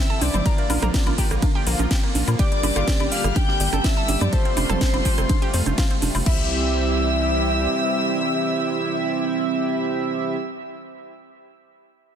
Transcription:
Already playing: C3 E3 G3 E4 E5 E6
0.10 A4
0.21 C2 C4 D5 D6, open hi-hat, high conga, cabasa
0.34 G1 C4, closed hi-hat, mid tom, cabasa, high woodblock
0.45 D3 F3 A#3 D4 F4 A#4 D5, kick, closed hi-hat, ride, cabasa
0.58 A#3, closed hi-hat
0.70 A#1 A#3, open hi-hat, high conga, cabasa, high woodblock
0.82 A#1 A#4, cross-stick, closed hi-hat, mid tom, cabasa
0.94 A#3, kick, snare, closed hi-hat, ride, cabasa
1.07 A#1 A#3, closed hi-hat, high conga, high woodblock
1.18 A#3 D4 F4 G4 D5, kick, open hi-hat, cabasa
1.31 A#1 A#3, cross-stick, closed hi-hat, cabasa
1.42 A#3, kick, closed hi-hat, ride, high conga, cabasa
1.55 G4
1.67 A#1 A#3, open hi-hat, cabasa
1.79 A#1 A#3, closed hi-hat, high conga, cabasa
1.91 G4, kick, snare, closed hi-hat, ride, cabasa
2.04 A#3
2.15 A#1, open hi-hat, high conga, cabasa
2.28 A#2 A#3, closed hi-hat, cabasa, high woodblock
2.39 D3 G3 A#3 D4 G4 D5 D6, kick, closed hi-hat, ride, cabasa
2.52 G3, closed hi-hat
2.63 G1 G3, open hi-hat, high conga, cabasa, high woodblock
2.76 G1 F4, cross-stick, closed hi-hat, cabasa
2.88 G3, kick, snare, closed hi-hat, ride, cabasa
3.00 G1 G3, closed hi-hat, high conga, high woodblock
3.12 A#3 D4 G4 D5 F5 F6, open hi-hat, cabasa
3.24 G1 G3, cross-stick, closed hi-hat, cabasa
3.36 G4 G5 G6, kick, closed hi-hat, ride, high conga, cabasa
3.49 G3, snare
3.60 G1 G3, open hi-hat, cabasa
3.73 G1 A4, cross-stick, closed hi-hat, high conga, cabasa
3.84 G3 E5 E6, kick, snare, closed hi-hat, ride, cabasa
3.97 A4
4.08 G1 G3, open hi-hat, high conga, cabasa
4.21 G2 G3 D5 D6, closed hi-hat, mid tom, cabasa, high woodblock
4.33 C3 A3 F4 G4 A4 C5 C6, kick, closed hi-hat, ride, cabasa
4.45 C4, closed hi-hat
4.57 F1 C4, open hi-hat, high conga, cabasa, high woodblock
4.69 F1 A4, cross-stick, closed hi-hat, mid tom, cabasa
4.81 C4, kick, snare, closed hi-hat, ride, cabasa
4.94 F1 C4, closed hi-hat, high conga, high woodblock
5.05 A3 F4 G4 C5, kick, open hi-hat, cabasa
5.18 F1 C4, cross-stick, closed hi-hat, cabasa
5.29 C4, kick, closed hi-hat, ride, high conga, cabasa
5.42 G4, closed hi-hat
5.54 F2 C4, open hi-hat, cabasa
5.66 F1 C4, closed hi-hat, high conga, cabasa
5.78 F4, kick, snare, closed hi-hat, ride, cabasa
5.91 C4, closed hi-hat
6.02 F1, open hi-hat, high conga, cabasa
6.15 F1 C4, open hi-hat, cabasa, high woodblock
6.26 C2 E3 G3 C4 E4 G4 E5 E6, kick, crash

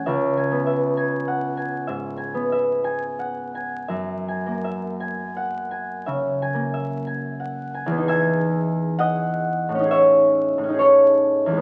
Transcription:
Already playing: A3 C#4 C#5 G#5
0.06 C#2 E5
0.37 G#5
0.52 B3
0.66 E5
0.97 G#5
1.28 F#5
1.57 G#5
1.87 G#2 E5
2.17 G#5
2.34 B3
2.52 E5
2.84 G#5
3.19 F#5
3.55 G#5
3.88 F#2 E5
4.28 G#5
4.46 A#3
4.64 E5
5.00 G#5
5.37 F#5
5.71 G#5
6.06 C#3 E5
6.42 G#5
6.54 A#3
6.74 E5
7.07 G#5
7.40 F#5
7.74 G#5
7.86 E2
7.91 B3
7.97 D#4
8.03 G#4
8.08 E5 G#5
8.99 D#5 F#5
9.69 A2
9.75 C#4
9.80 D#4
9.85 G#4
9.91 C#5 E5
10.58 A2
10.63 C#4
10.69 D#4
10.74 G#4
10.79 A4 C#5
11.46 E2
11.52 G#3
11.57 B3

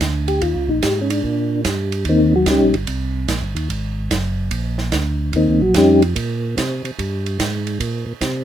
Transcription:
0.01 D2, kick, snare, hi-hat pedal, ride
0.28 G4, ride
0.41 D#2 F4, kick, ride
0.55 C#2
0.68 A#1 D#4
0.82 G#2 G4, kick, snare, hi-hat pedal, ride
1.01 C#4
1.10 D4, ride
1.24 A#2, kick
1.65 G2, kick, snare, hi-hat pedal, ride
1.92 ride
2.05 D#2, kick, ride
2.09 D#3 A#3 C4 D#4
2.36 F#3 F#4
2.46 C#2, kick, snare, hi-hat pedal, ride
2.50 G3 C#4 D#4 G4
2.60 A#1
2.74 G1, ride
2.87 C2, kick, ride
3.28 A#1, kick, snare, hi-hat pedal, ride
3.42 G1
3.55 D#2, ride
3.69 G#1, kick, ride
4.10 F#1, kick, snare, hi-hat pedal, ride
4.51 A#1, kick, ride
4.78 snare
4.92 D2, kick, snare, hi-hat pedal, ride
5.33 D#2 D#3 A#3 C4 D#4, kick, ride
5.48 C#2
5.61 A#1 F#3 F#4
5.74 F2 G3 C#4 D#4 G4, kick, snare, hi-hat pedal, ride
6.02 ride
6.15 A#2, kick, ride
6.57 C3, kick, snare, hi-hat pedal, ride
6.84 C3, ride
6.98 G2, kick, ride
7.26 ride
7.39 G#2, kick, snare, hi-hat pedal, ride
7.67 ride
7.80 A#2, kick, ride
8.06 A#2
8.21 C3, kick, snare, hi-hat pedal, ride

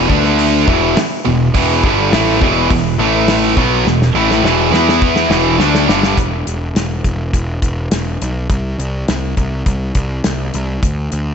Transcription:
0.08 D2 D3 A3 D4, kick
0.24 snare
0.39 open hi-hat
0.67 E1 E2 B2 E3, kick
0.96 muted distorted electric guitar stroke, muted picked electric bass stroke, snare, open hi-hat
1.25 E1 E2 B2
1.55 E1 E2 B2 E3, kick, open hi-hat
1.84 G1 G2 D3 G3, kick
2.12 A1 A2 E3 A3, snare, open hi-hat
2.41 E1 E2 B2 E3, kick
2.69 E1 E2 B2, kick, open hi-hat
2.98 A1 A2 E3 A3
3.28 snare, open hi-hat
3.56 B1 B2 F#3 B3, kick
3.84 E1 E2 B2, snare
4.02 snare
4.14 A1 A2 E3 A3
4.31 snare
4.43 E1 E2 B2 E3, snare
4.71 E2 E3 B3 E4, snare
4.89 snare
5.02 kick
5.16 snare
5.29 E1 E2 B2 E3, snare
5.59 D2 D3 A3 D4, snare
5.75 snare
5.87 G1 G2 D3 G3, snare
6.03 snare
6.17 E1, kick, closed hi-hat
6.47 E1, closed hi-hat
6.75 E1, snare, closed hi-hat
7.04 E1, kick, closed hi-hat
7.33 E1, kick, closed hi-hat
7.62 E1, kick, closed hi-hat
7.91 E1, snare, closed hi-hat
8.22 B1, closed hi-hat
8.50 C2, kick, closed hi-hat
8.79 C2, closed hi-hat
9.08 C2, snare, closed hi-hat
9.37 C2, kick, closed hi-hat
9.66 C2, kick, closed hi-hat
9.95 C2, kick, closed hi-hat
10.24 C2, snare, closed hi-hat
10.54 C2, closed hi-hat
10.83 D2, kick, closed hi-hat
11.12 D2, closed hi-hat

